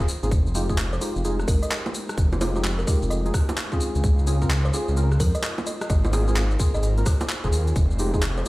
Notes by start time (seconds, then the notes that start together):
Already playing: D#4 F4 A#4 C5
0.08 open hi-hat, shaker
0.23 G#1 A#3 C4 F4 G#4, closed hi-hat, shaker
0.31 F1 G#3 D#4 G4, kick, closed hi-hat, shaker
0.47 shaker
0.55 G#3 D#4 F4 G4, open hi-hat, shaker
0.69 G#3 D#4 F4 G#4, kick, shaker
0.78 clap, closed hi-hat, shaker
0.93 C5, shaker
1.01 G#3 D#4 F4 G4 C5, open hi-hat, shaker
1.16 F1, shaker
1.25 G#3 D#4 F4 G#4, closed hi-hat, shaker
1.40 cross-stick, shaker
1.48 G#1 A#4, kick, open hi-hat, shaker
1.63 D#5, closed hi-hat, shaker
1.71 D#5, clap, closed hi-hat, shaker
1.86 high bongo, shaker
1.94 open hi-hat, shaker
2.09 cross-stick, closed hi-hat, shaker
2.18 F1, kick, closed hi-hat, shaker
2.33 high bongo, shaker
2.41 G#3 D#4 F4 G4 C5, cross-stick, open hi-hat, high bongo, shaker
2.55 G#3 D#4 F4 G4 C5, shaker
2.64 clap, closed hi-hat, shaker
2.79 A#4, shaker
2.87 G#3 D#4 F4 G4 A#4, kick, open hi-hat, shaker
3.02 F1, shaker
3.10 D#5, closed hi-hat, shaker
3.25 G#3 D#4 F4 G#4, closed hi-hat, shaker
3.34 kick, cross-stick, open hi-hat, shaker
3.49 closed hi-hat, high bongo, shaker
3.58 clap, closed hi-hat, shaker
3.72 C4 C#4 F4 G#4, kick, shaker
3.80 F4 C5, open hi-hat, shaker
3.95 C#2, closed hi-hat, shaker
4.04 C#2, kick, closed hi-hat, shaker
4.19 shaker
4.27 C4 C#4 F4 G#4, open hi-hat, shaker
4.42 C4 C#4 F4 A#4, kick, shaker
4.50 clap, closed hi-hat, shaker
4.65 C5, shaker
4.73 C4 C#4 F4 G#4 C5, open hi-hat, shaker
4.88 C#2, shaker
4.97 C4 C#4 F4 A#4, closed hi-hat, shaker
5.12 cross-stick, shaker
5.20 F2 A#4, kick, open hi-hat, shaker
5.35 D#5, closed hi-hat, shaker
5.43 D#5, clap, closed hi-hat, shaker
5.58 high bongo, shaker
5.67 D#4 A#4 D#5, open hi-hat, shaker
5.81 D#5, cross-stick, closed hi-hat, shaker
5.90 G#1 D#5, kick, closed hi-hat, shaker
6.05 D#5, high bongo, shaker
6.13 A#3 C4 F4 G#4, cross-stick, open hi-hat, high bongo, shaker
6.28 A#3 C4 F4 G#4, shaker
6.36 F5, clap, closed hi-hat, shaker
6.51 shaker
6.60 A#3 C4 F4 G#4, kick, open hi-hat, shaker
6.74 G#1 D#5, shaker
6.83 D#5, closed hi-hat, shaker
6.98 A#3 C4 F4 A#4, closed hi-hat, shaker
7.06 C5, kick, cross-stick, open hi-hat, shaker
7.21 C5, closed hi-hat, high bongo, shaker
7.29 clap, closed hi-hat, shaker
7.44 F1 A#3 C4 F4 G#4, kick, shaker
7.53 D#2, open hi-hat, shaker
7.67 closed hi-hat, shaker
7.76 F1 G#3 G4, kick, closed hi-hat, shaker
7.91 shaker
7.99 G#3 D#4 F4 G4, open hi-hat, shaker
8.14 G#3 D#4 F4 G#4, kick, shaker
8.22 clap, closed hi-hat, shaker
8.37 C5, shaker